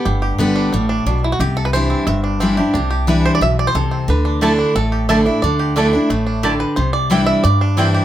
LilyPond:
<<
  \new Staff \with { instrumentName = "Mandolin" } { \time 4/4 \key c \lydian \tempo 4 = 179 r1 | r1 | r1 | r4 <a e' d'' a''>16 r4. r16 <a e' d'' a''>16 r8. |
r4 <a e' d'' a''>16 r4. r16 <a e' d'' a''>16 r8. | r4 <c' e' d'' g''>16 r4. r16 <c' e' d'' g''>16 r8. | }
  \new Staff \with { instrumentName = "Five-string banjo" } { \time 4/4 \key c \lydian << { g'4. r4. d'8 e'16 fis'16 | g'8 a'16 b'16 c''4 e''4 r4 | r4 b'8 c''16 d''16 e''8 d''16 c''16 a'4 | b'4 r4 a'4 e''4 |
d''4 r2 r8 b'8 | c''8 d''4 e''8 d''4 r4 | } \\ { b8 g'8 b8 d'8 g8 d'4. | r4. c'4 d'8 c'8 g'8 | d'8 g'4. r4. c'8 | r8 d'8 a8 d'4 g'4 d'8~ |
d'8 g'8 d'8 d'8 a8 d'8 g'4 | r4 g4. d'8 c'8 g'8 | } >> }
  \new Staff \with { instrumentName = "Steel-string acoustic guitar" } { \clef bass \time 4/4 \key c \lydian << { r4 <d g b g'>4 r2 | r4 <e g d' e'>4 r4 <e g d' e'>8 <d' e'>8 | r4 <e g d' e'>4 r2 | r4 <d a d' e'>4 r4 <d a d' e'>8 <d' e'>8 |
r4 <d a d' e'>8 <d' e'>8 r2 | r4 <e g d' e'>4 r4 <e g d' e'>4 | } \\ { g,2 a,4 b,4 | c2 g,2 | c2 b,4 c4 | d2 a,2 |
d2 a,4 d4 | c2 g,2 | } >> }
  \new Staff \with { instrumentName = "Upright bass" } { \clef bass \time 4/4 \key c \lydian g,,4 g,,4 a,,4 b,,4 | c,2 g,,2 | c,2 b,,4 c,4 | d,2 a,,2 |
d,2 a,,2 | c,2 g,2 | }
>>